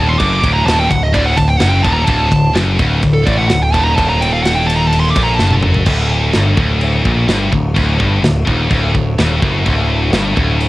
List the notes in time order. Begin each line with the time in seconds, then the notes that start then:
Already playing: D#1 D#2 D3 A3 F#4 A4
0.09 C6
0.18 F#1 F#2 D6, kick, ride
0.43 D1 D2, kick, ride
0.53 A#5
0.64 D#1 D#2 A5, snare, ride
0.79 G5
0.90 D1 D2 F#5, kick, ride
1.03 D#5
1.13 D1 D2 D5, kick, ride
1.26 F#5
1.36 D1 D2 A5, kick, ride
1.47 G5
1.58 F#1 F#2 F#5, snare, ride
1.69 G5
1.83 D#1 D#2 A5, kick, ride
1.93 A#5
2.05 D1 D2 A5, kick, ride
2.30 D1 D2, kick, ride
2.54 F#1 F#2, snare, ride
2.79 D1 D2, kick, ride
3.02 D1 D2, kick, ride
3.14 A4
3.23 A1 A2 D5, kick, ride
3.27 A2
3.38 F#5
3.48 D1 D2 F#5, snare, ride
3.52 D2
3.62 G5
3.73 D#1 D#2 A5, kick, ride
3.85 A#5
3.95 D#1 D#2 A5, kick, ride
4.09 A#5
4.21 G5, ride
4.33 F5
4.43 F#5, snare, ride
4.55 G5
4.67 A5, ride
4.76 A#5
4.87 A5
4.93 ride
5.00 C6
5.11 D6
5.16 A#1 A#2, kick, ride
5.24 A#5
5.36 F#1 F#2 A5, snare
5.51 high tom
5.63 mid tom
5.74 floor tom
5.86 D1 D2 D3 A3 F#4 A4, kick, crash
6.33 G1 G2, snare, crash
6.57 D1 D2, kick
6.81 crash
7.04 A#1 A#2, kick
7.28 G1 G2, snare, crash
7.52 D1 D2, kick
7.74 D1 D2, kick, crash
7.99 G1 G2, kick
8.22 D1 D2, snare, crash
8.45 D#1 D#2, kick
8.69 D1 D2, kick, crash
8.94 D1 D2, kick
9.18 D#1 D#2, snare, crash
9.42 F#1 F#2, kick
9.65 D1 D2, kick, crash
10.11 G1 G2, snare, crash
10.36 D1 D2, kick
10.60 crash